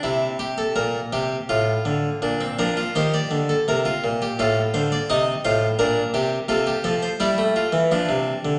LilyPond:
<<
  \new Staff \with { instrumentName = "Harpsichord" } { \time 3/4 \key bes \major \tempo 4 = 84 << { r2. | r8 bes'8 c''16 d''8 a'16 bes'16 f'8 g'16 | a'8 c''16 d''16 ees''8 c''8 bes'4 | a'16 g'16 a'16 c''16 d''2 | } \\ { e'8 g'16 a'16 bes'8 g'8 f'4 | d'16 c'16 d'16 f'16 g'2 | f'4 ees'8 f'8 d'8 g'8 | f'4 e'8 f'8 d'4 | } >> }
  \new Staff \with { instrumentName = "Harpsichord" } { \clef bass \time 3/4 \key bes \major c4 bes,8 c8 a,8 d8 | bes,8 f8 ees8 d8 c8 bes,8 | a,8 d8 c8 a,8 bes,8 c8 | c8 f8 g16 a8 e16 f16 c8 d16 | }
>>